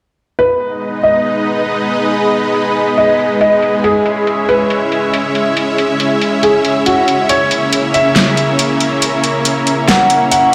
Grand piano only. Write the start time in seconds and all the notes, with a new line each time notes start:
0.39 B4
1.03 D#5
2.98 D#5
3.41 D#5
3.84 G#4
4.49 B4
6.43 G#4
6.86 F#4
7.29 C#5
7.94 E5
9.88 F#5
10.32 F#5